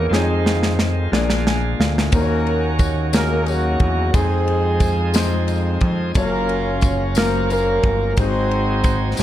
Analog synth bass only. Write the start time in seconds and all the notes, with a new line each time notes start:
0.11 F2
1.12 A#1
1.80 D2
2.13 D#2
3.80 E2
4.14 F2
5.81 F2
6.16 F#1
7.84 G1
8.18 G#1
9.19 A1